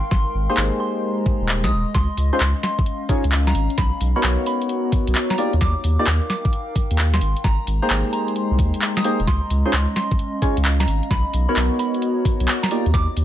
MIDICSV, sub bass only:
0, 0, Header, 1, 2, 480
1, 0, Start_track
1, 0, Tempo, 458015
1, 121, Time_signature, 4, 2, 24, 8
1, 13881, End_track
2, 0, Start_track
2, 0, Title_t, "Sub bass"
2, 0, Program_c, 0, 38
2, 120, Note_on_c, 0, 32, 95
2, 259, Note_off_c, 0, 32, 0
2, 361, Note_on_c, 0, 32, 87
2, 499, Note_off_c, 0, 32, 0
2, 600, Note_on_c, 0, 32, 93
2, 739, Note_off_c, 0, 32, 0
2, 1479, Note_on_c, 0, 27, 84
2, 1718, Note_on_c, 0, 36, 89
2, 1734, Note_off_c, 0, 27, 0
2, 1799, Note_on_c, 0, 27, 89
2, 1815, Note_off_c, 0, 36, 0
2, 1938, Note_off_c, 0, 27, 0
2, 2040, Note_on_c, 0, 37, 99
2, 2179, Note_off_c, 0, 37, 0
2, 2279, Note_on_c, 0, 37, 88
2, 2418, Note_off_c, 0, 37, 0
2, 2522, Note_on_c, 0, 37, 90
2, 2660, Note_off_c, 0, 37, 0
2, 3400, Note_on_c, 0, 37, 93
2, 3704, Note_off_c, 0, 37, 0
2, 3721, Note_on_c, 0, 32, 82
2, 3859, Note_off_c, 0, 32, 0
2, 3960, Note_on_c, 0, 35, 98
2, 4099, Note_off_c, 0, 35, 0
2, 4200, Note_on_c, 0, 35, 86
2, 4339, Note_off_c, 0, 35, 0
2, 4441, Note_on_c, 0, 35, 91
2, 4579, Note_off_c, 0, 35, 0
2, 5321, Note_on_c, 0, 35, 102
2, 5390, Note_off_c, 0, 35, 0
2, 5801, Note_on_c, 0, 39, 92
2, 5871, Note_off_c, 0, 39, 0
2, 5881, Note_on_c, 0, 39, 98
2, 6019, Note_off_c, 0, 39, 0
2, 6121, Note_on_c, 0, 39, 88
2, 6259, Note_off_c, 0, 39, 0
2, 6361, Note_on_c, 0, 39, 94
2, 6499, Note_off_c, 0, 39, 0
2, 7240, Note_on_c, 0, 39, 92
2, 7544, Note_off_c, 0, 39, 0
2, 7561, Note_on_c, 0, 32, 81
2, 7699, Note_off_c, 0, 32, 0
2, 7800, Note_on_c, 0, 32, 98
2, 7939, Note_off_c, 0, 32, 0
2, 8040, Note_on_c, 0, 32, 89
2, 8179, Note_off_c, 0, 32, 0
2, 8281, Note_on_c, 0, 32, 94
2, 8419, Note_off_c, 0, 32, 0
2, 8919, Note_on_c, 0, 36, 85
2, 9000, Note_on_c, 0, 39, 89
2, 9016, Note_off_c, 0, 36, 0
2, 9139, Note_off_c, 0, 39, 0
2, 9639, Note_on_c, 0, 27, 86
2, 9710, Note_off_c, 0, 27, 0
2, 9720, Note_on_c, 0, 37, 96
2, 9859, Note_off_c, 0, 37, 0
2, 9960, Note_on_c, 0, 37, 87
2, 10099, Note_off_c, 0, 37, 0
2, 10199, Note_on_c, 0, 37, 91
2, 10338, Note_off_c, 0, 37, 0
2, 11080, Note_on_c, 0, 37, 94
2, 11384, Note_off_c, 0, 37, 0
2, 11399, Note_on_c, 0, 32, 82
2, 11538, Note_off_c, 0, 32, 0
2, 11641, Note_on_c, 0, 35, 101
2, 11779, Note_off_c, 0, 35, 0
2, 11881, Note_on_c, 0, 35, 90
2, 12019, Note_off_c, 0, 35, 0
2, 12120, Note_on_c, 0, 35, 93
2, 12259, Note_off_c, 0, 35, 0
2, 12998, Note_on_c, 0, 35, 103
2, 13069, Note_off_c, 0, 35, 0
2, 13477, Note_on_c, 0, 39, 97
2, 13549, Note_off_c, 0, 39, 0
2, 13559, Note_on_c, 0, 39, 98
2, 13698, Note_off_c, 0, 39, 0
2, 13800, Note_on_c, 0, 39, 88
2, 13881, Note_off_c, 0, 39, 0
2, 13881, End_track
0, 0, End_of_file